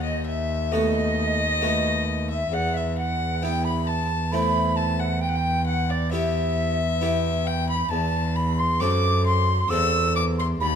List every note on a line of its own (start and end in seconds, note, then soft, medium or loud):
0.00 2.49 D#2 medium
0.00 2.49 D#2 soft
0.00 0.25 D#5 soft
0.00 0.26 D#5 medium
0.26 0.71 E5 medium
0.26 0.73 E5 medium
0.71 1.37 A3 soft
0.71 1.37 B3 soft
0.71 1.37 F#4 soft
0.71 2.03 D#5 medium
0.71 2.30 D#5 medium
1.62 2.27 A3 soft
1.62 2.27 B3 soft
1.62 2.27 F#4 soft
2.30 2.51 E5 medium
2.30 2.55 E5 medium
2.52 7.87 E2 soft
2.52 7.87 E2 medium
2.52 2.75 F#5 medium
2.52 2.78 F#5 medium
2.74 2.96 E5 medium
2.74 2.98 E5 medium
2.96 3.41 F#5 medium
2.96 3.44 F#5 medium
3.41 4.08 B3 soft
3.41 4.08 E4 soft
3.41 3.66 G5 medium
3.41 3.65 G5 medium
3.65 3.85 B5 medium
3.65 3.89 B5 medium
3.85 4.33 A5 medium
3.85 4.35 A5 medium
4.32 5.18 A3 soft
4.32 5.19 C4 soft
4.32 5.19 E4 soft
4.32 4.78 B5 medium
4.32 4.79 B5 medium
4.76 4.99 A5 medium
4.76 5.01 A5 medium
5.00 5.23 F#5 medium
5.00 5.22 F#5 medium
5.21 5.66 G5 medium
5.21 5.30 G5 medium
5.29 5.37 F#5 medium
5.36 5.66 G5 medium
5.67 5.88 F#5 medium
5.67 5.92 F#5 medium
5.89 6.12 D5 medium
5.89 6.11 D5 medium
6.11 6.77 B3 soft
6.11 6.77 E4 soft
6.11 6.78 G4 soft
6.11 7.16 E5 medium
6.11 7.48 E5 medium
7.01 7.66 B3 soft
7.01 7.66 E4 soft
7.01 7.67 G4 soft
7.45 7.68 G5 medium
7.45 7.69 G5 medium
7.68 7.92 B5 medium
7.68 7.91 B5 medium
7.91 8.82 E2 medium
7.91 8.78 E2 soft
7.91 8.37 A5 medium
8.35 8.56 B5 medium
8.35 8.61 B5 medium
8.57 8.82 C6 medium
8.80 9.67 F#2 soft
8.80 9.70 F#2 medium
8.80 9.46 C4 soft
8.80 9.46 F#4 soft
8.80 9.46 A4 soft
8.80 9.26 D6 medium
8.80 9.25 D6 medium
9.26 9.72 C6 medium
9.26 9.70 C6 medium
9.70 10.58 E2 soft
9.70 10.60 E2 medium
9.70 10.36 C4 soft
9.70 10.36 F#4 soft
9.70 10.36 A4 soft
9.70 10.15 E6 medium
10.15 10.21 D6 medium
10.15 10.24 D6 medium
10.38 10.44 C6 medium
10.38 10.48 C6 medium
10.61 10.75 D#2 medium
10.61 10.75 D#2 soft
10.61 10.67 B5 medium
10.61 10.75 B5 medium